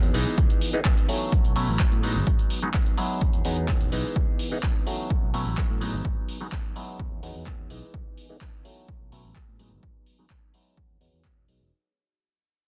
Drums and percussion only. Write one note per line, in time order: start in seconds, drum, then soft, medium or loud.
0.03 closed hi-hat medium
0.14 open hi-hat medium
0.38 kick loud
0.38 closed hi-hat medium
0.50 closed hi-hat soft
0.61 open hi-hat loud
0.74 closed hi-hat soft
0.85 kick loud
0.85 clap loud
0.85 closed hi-hat medium
0.97 closed hi-hat soft
1.09 open hi-hat loud
1.32 kick loud
1.32 closed hi-hat medium
1.44 closed hi-hat soft
1.56 open hi-hat loud
1.80 kick loud
1.80 clap loud
1.80 closed hi-hat medium
1.92 closed hi-hat soft
2.03 open hi-hat medium
2.27 kick loud
2.27 closed hi-hat medium
2.39 closed hi-hat soft
2.50 open hi-hat loud
2.62 closed hi-hat soft
2.74 kick loud
2.74 clap loud
2.74 closed hi-hat medium
2.86 closed hi-hat medium
2.98 open hi-hat medium
3.21 kick loud
3.21 closed hi-hat medium
3.33 closed hi-hat soft
3.45 open hi-hat loud
3.57 closed hi-hat soft
3.68 kick loud
3.68 clap loud
3.68 closed hi-hat medium
3.81 closed hi-hat soft
3.92 open hi-hat medium
4.16 kick loud
4.39 open hi-hat loud
4.63 kick loud
4.63 clap loud
4.87 open hi-hat medium
5.10 kick loud
5.34 open hi-hat loud
5.58 kick loud
5.58 clap loud
5.81 open hi-hat medium
6.05 kick loud
6.29 open hi-hat loud
6.52 kick loud
6.52 clap loud
6.76 open hi-hat medium
7.00 kick loud
7.23 open hi-hat loud
7.47 kick loud
7.47 clap loud
7.70 open hi-hat medium
7.94 kick loud
8.18 open hi-hat loud
8.41 kick loud
8.41 clap loud
8.65 open hi-hat medium
8.88 kick loud
9.12 open hi-hat medium
9.36 kick loud
9.36 clap loud
9.59 open hi-hat medium
9.83 kick loud
10.06 open hi-hat medium
10.30 kick loud
10.30 clap loud
10.54 open hi-hat medium
10.77 kick loud
11.01 open hi-hat medium
11.25 kick loud
11.25 clap loud
11.48 open hi-hat medium